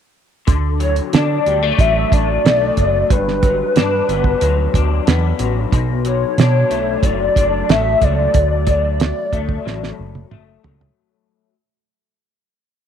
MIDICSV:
0, 0, Header, 1, 5, 480
1, 0, Start_track
1, 0, Key_signature, 2, "major"
1, 0, Tempo, 656455
1, 347, Time_signature, 4, 2, 24, 8
1, 9413, End_track
2, 0, Start_track
2, 0, Title_t, "Soft synth lead"
2, 0, Program_c, 0, 80
2, 599, Note_on_c, 0, 73, 85
2, 702, Note_off_c, 0, 73, 0
2, 839, Note_on_c, 0, 74, 95
2, 1314, Note_on_c, 0, 76, 114
2, 1324, Note_off_c, 0, 74, 0
2, 1554, Note_on_c, 0, 74, 106
2, 1565, Note_off_c, 0, 76, 0
2, 2275, Note_on_c, 0, 71, 102
2, 2286, Note_off_c, 0, 74, 0
2, 3949, Note_off_c, 0, 71, 0
2, 4432, Note_on_c, 0, 73, 100
2, 5155, Note_on_c, 0, 74, 100
2, 5166, Note_off_c, 0, 73, 0
2, 5636, Note_on_c, 0, 76, 100
2, 5646, Note_off_c, 0, 74, 0
2, 5875, Note_on_c, 0, 74, 98
2, 5886, Note_off_c, 0, 76, 0
2, 7789, Note_off_c, 0, 74, 0
2, 9413, End_track
3, 0, Start_track
3, 0, Title_t, "Clean electric guitar"
3, 0, Program_c, 1, 27
3, 345, Note_on_c, 1, 50, 71
3, 584, Note_on_c, 1, 54, 53
3, 832, Note_on_c, 1, 62, 66
3, 1071, Note_on_c, 1, 55, 59
3, 1188, Note_off_c, 1, 55, 0
3, 1188, Note_on_c, 1, 57, 48
3, 1306, Note_off_c, 1, 54, 0
3, 1309, Note_on_c, 1, 54, 58
3, 1548, Note_off_c, 1, 62, 0
3, 1551, Note_on_c, 1, 62, 49
3, 1785, Note_off_c, 1, 57, 0
3, 1793, Note_on_c, 1, 57, 61
3, 2027, Note_off_c, 1, 54, 0
3, 2030, Note_on_c, 1, 54, 52
3, 2269, Note_on_c, 1, 43, 76
3, 2318, Note_off_c, 1, 57, 0
3, 2505, Note_off_c, 1, 54, 0
3, 2508, Note_on_c, 1, 54, 53
3, 2752, Note_off_c, 1, 62, 0
3, 2755, Note_on_c, 1, 62, 65
3, 2904, Note_off_c, 1, 50, 0
3, 2989, Note_on_c, 1, 59, 55
3, 3223, Note_off_c, 1, 54, 0
3, 3226, Note_on_c, 1, 54, 67
3, 3470, Note_off_c, 1, 62, 0
3, 3473, Note_on_c, 1, 62, 58
3, 3706, Note_off_c, 1, 59, 0
3, 3709, Note_on_c, 1, 59, 61
3, 3940, Note_off_c, 1, 54, 0
3, 3943, Note_on_c, 1, 54, 53
3, 4186, Note_off_c, 1, 43, 0
3, 4188, Note_on_c, 1, 47, 79
3, 4425, Note_off_c, 1, 54, 0
3, 4428, Note_on_c, 1, 54, 55
3, 4662, Note_off_c, 1, 62, 0
3, 4665, Note_on_c, 1, 62, 63
3, 4899, Note_off_c, 1, 59, 0
3, 4901, Note_on_c, 1, 57, 58
3, 5140, Note_off_c, 1, 54, 0
3, 5143, Note_on_c, 1, 54, 68
3, 5377, Note_off_c, 1, 62, 0
3, 5380, Note_on_c, 1, 62, 53
3, 5623, Note_off_c, 1, 57, 0
3, 5626, Note_on_c, 1, 57, 62
3, 5859, Note_off_c, 1, 54, 0
3, 5862, Note_on_c, 1, 54, 63
3, 6105, Note_off_c, 1, 47, 0
3, 6334, Note_off_c, 1, 54, 0
3, 6337, Note_on_c, 1, 54, 56
3, 6820, Note_off_c, 1, 57, 0
3, 6823, Note_on_c, 1, 57, 57
3, 7057, Note_off_c, 1, 54, 0
3, 7060, Note_on_c, 1, 54, 61
3, 7537, Note_off_c, 1, 57, 0
3, 7540, Note_on_c, 1, 57, 59
3, 7773, Note_off_c, 1, 54, 0
3, 7776, Note_on_c, 1, 54, 57
3, 7939, Note_off_c, 1, 62, 0
3, 8434, Note_off_c, 1, 54, 0
3, 8436, Note_off_c, 1, 57, 0
3, 9413, End_track
4, 0, Start_track
4, 0, Title_t, "Analog synth bass"
4, 0, Program_c, 2, 38
4, 350, Note_on_c, 2, 38, 106
4, 733, Note_off_c, 2, 38, 0
4, 829, Note_on_c, 2, 50, 91
4, 1020, Note_off_c, 2, 50, 0
4, 1070, Note_on_c, 2, 38, 90
4, 1261, Note_off_c, 2, 38, 0
4, 1306, Note_on_c, 2, 33, 95
4, 1498, Note_off_c, 2, 33, 0
4, 1550, Note_on_c, 2, 33, 92
4, 1741, Note_off_c, 2, 33, 0
4, 1789, Note_on_c, 2, 35, 94
4, 1980, Note_off_c, 2, 35, 0
4, 2029, Note_on_c, 2, 30, 92
4, 2220, Note_off_c, 2, 30, 0
4, 2269, Note_on_c, 2, 31, 103
4, 2652, Note_off_c, 2, 31, 0
4, 2748, Note_on_c, 2, 43, 94
4, 2939, Note_off_c, 2, 43, 0
4, 2989, Note_on_c, 2, 31, 84
4, 3180, Note_off_c, 2, 31, 0
4, 3231, Note_on_c, 2, 38, 86
4, 3421, Note_off_c, 2, 38, 0
4, 3467, Note_on_c, 2, 38, 79
4, 3658, Note_off_c, 2, 38, 0
4, 3707, Note_on_c, 2, 40, 73
4, 3898, Note_off_c, 2, 40, 0
4, 3947, Note_on_c, 2, 33, 96
4, 4138, Note_off_c, 2, 33, 0
4, 4185, Note_on_c, 2, 35, 101
4, 4568, Note_off_c, 2, 35, 0
4, 4664, Note_on_c, 2, 47, 102
4, 4856, Note_off_c, 2, 47, 0
4, 4902, Note_on_c, 2, 35, 79
4, 5095, Note_off_c, 2, 35, 0
4, 5140, Note_on_c, 2, 30, 86
4, 5333, Note_off_c, 2, 30, 0
4, 5386, Note_on_c, 2, 30, 91
4, 5577, Note_off_c, 2, 30, 0
4, 5626, Note_on_c, 2, 33, 82
4, 5817, Note_off_c, 2, 33, 0
4, 5862, Note_on_c, 2, 37, 85
4, 6054, Note_off_c, 2, 37, 0
4, 6103, Note_on_c, 2, 38, 94
4, 6674, Note_off_c, 2, 38, 0
4, 6821, Note_on_c, 2, 38, 86
4, 7014, Note_off_c, 2, 38, 0
4, 7064, Note_on_c, 2, 33, 91
4, 7256, Note_off_c, 2, 33, 0
4, 7303, Note_on_c, 2, 30, 82
4, 7495, Note_off_c, 2, 30, 0
4, 7544, Note_on_c, 2, 30, 69
4, 7736, Note_off_c, 2, 30, 0
4, 7786, Note_on_c, 2, 37, 82
4, 7977, Note_off_c, 2, 37, 0
4, 9413, End_track
5, 0, Start_track
5, 0, Title_t, "Drums"
5, 348, Note_on_c, 9, 42, 79
5, 349, Note_on_c, 9, 36, 101
5, 421, Note_off_c, 9, 42, 0
5, 422, Note_off_c, 9, 36, 0
5, 587, Note_on_c, 9, 42, 62
5, 660, Note_off_c, 9, 42, 0
5, 704, Note_on_c, 9, 42, 49
5, 777, Note_off_c, 9, 42, 0
5, 827, Note_on_c, 9, 42, 81
5, 838, Note_on_c, 9, 38, 94
5, 900, Note_off_c, 9, 42, 0
5, 911, Note_off_c, 9, 38, 0
5, 1071, Note_on_c, 9, 42, 60
5, 1144, Note_off_c, 9, 42, 0
5, 1306, Note_on_c, 9, 36, 89
5, 1310, Note_on_c, 9, 42, 83
5, 1379, Note_off_c, 9, 36, 0
5, 1383, Note_off_c, 9, 42, 0
5, 1549, Note_on_c, 9, 36, 81
5, 1555, Note_on_c, 9, 42, 83
5, 1623, Note_off_c, 9, 36, 0
5, 1628, Note_off_c, 9, 42, 0
5, 1796, Note_on_c, 9, 42, 66
5, 1801, Note_on_c, 9, 38, 103
5, 1869, Note_off_c, 9, 42, 0
5, 1874, Note_off_c, 9, 38, 0
5, 2027, Note_on_c, 9, 42, 67
5, 2028, Note_on_c, 9, 36, 68
5, 2100, Note_off_c, 9, 42, 0
5, 2101, Note_off_c, 9, 36, 0
5, 2270, Note_on_c, 9, 36, 103
5, 2270, Note_on_c, 9, 42, 87
5, 2343, Note_off_c, 9, 36, 0
5, 2343, Note_off_c, 9, 42, 0
5, 2399, Note_on_c, 9, 38, 28
5, 2472, Note_off_c, 9, 38, 0
5, 2506, Note_on_c, 9, 36, 97
5, 2506, Note_on_c, 9, 42, 59
5, 2579, Note_off_c, 9, 42, 0
5, 2580, Note_off_c, 9, 36, 0
5, 2748, Note_on_c, 9, 42, 76
5, 2758, Note_on_c, 9, 38, 95
5, 2821, Note_off_c, 9, 42, 0
5, 2831, Note_off_c, 9, 38, 0
5, 2992, Note_on_c, 9, 42, 57
5, 3065, Note_off_c, 9, 42, 0
5, 3102, Note_on_c, 9, 36, 82
5, 3175, Note_off_c, 9, 36, 0
5, 3226, Note_on_c, 9, 42, 81
5, 3299, Note_off_c, 9, 42, 0
5, 3466, Note_on_c, 9, 36, 84
5, 3474, Note_on_c, 9, 42, 74
5, 3539, Note_off_c, 9, 36, 0
5, 3547, Note_off_c, 9, 42, 0
5, 3709, Note_on_c, 9, 42, 73
5, 3714, Note_on_c, 9, 38, 104
5, 3782, Note_off_c, 9, 42, 0
5, 3787, Note_off_c, 9, 38, 0
5, 3942, Note_on_c, 9, 42, 68
5, 4015, Note_off_c, 9, 42, 0
5, 4186, Note_on_c, 9, 36, 95
5, 4188, Note_on_c, 9, 42, 82
5, 4259, Note_off_c, 9, 36, 0
5, 4261, Note_off_c, 9, 42, 0
5, 4422, Note_on_c, 9, 42, 69
5, 4495, Note_off_c, 9, 42, 0
5, 4666, Note_on_c, 9, 42, 80
5, 4677, Note_on_c, 9, 38, 96
5, 4739, Note_off_c, 9, 42, 0
5, 4750, Note_off_c, 9, 38, 0
5, 4905, Note_on_c, 9, 42, 60
5, 4978, Note_off_c, 9, 42, 0
5, 5138, Note_on_c, 9, 36, 89
5, 5142, Note_on_c, 9, 42, 84
5, 5211, Note_off_c, 9, 36, 0
5, 5215, Note_off_c, 9, 42, 0
5, 5383, Note_on_c, 9, 36, 79
5, 5388, Note_on_c, 9, 42, 78
5, 5457, Note_off_c, 9, 36, 0
5, 5461, Note_off_c, 9, 42, 0
5, 5626, Note_on_c, 9, 42, 72
5, 5631, Note_on_c, 9, 38, 111
5, 5699, Note_off_c, 9, 42, 0
5, 5704, Note_off_c, 9, 38, 0
5, 5861, Note_on_c, 9, 42, 60
5, 5862, Note_on_c, 9, 36, 83
5, 5934, Note_off_c, 9, 42, 0
5, 5935, Note_off_c, 9, 36, 0
5, 6099, Note_on_c, 9, 42, 74
5, 6103, Note_on_c, 9, 36, 106
5, 6172, Note_off_c, 9, 42, 0
5, 6176, Note_off_c, 9, 36, 0
5, 6337, Note_on_c, 9, 42, 66
5, 6340, Note_on_c, 9, 36, 101
5, 6410, Note_off_c, 9, 42, 0
5, 6413, Note_off_c, 9, 36, 0
5, 6580, Note_on_c, 9, 42, 83
5, 6591, Note_on_c, 9, 38, 99
5, 6653, Note_off_c, 9, 42, 0
5, 6664, Note_off_c, 9, 38, 0
5, 6819, Note_on_c, 9, 36, 83
5, 6823, Note_on_c, 9, 42, 62
5, 6892, Note_off_c, 9, 36, 0
5, 6897, Note_off_c, 9, 42, 0
5, 6937, Note_on_c, 9, 36, 91
5, 7010, Note_off_c, 9, 36, 0
5, 7070, Note_on_c, 9, 38, 48
5, 7143, Note_off_c, 9, 38, 0
5, 7191, Note_on_c, 9, 38, 48
5, 7265, Note_off_c, 9, 38, 0
5, 7423, Note_on_c, 9, 48, 52
5, 7496, Note_off_c, 9, 48, 0
5, 7542, Note_on_c, 9, 47, 79
5, 7615, Note_off_c, 9, 47, 0
5, 7782, Note_on_c, 9, 43, 89
5, 7855, Note_off_c, 9, 43, 0
5, 7906, Note_on_c, 9, 43, 82
5, 7979, Note_off_c, 9, 43, 0
5, 9413, End_track
0, 0, End_of_file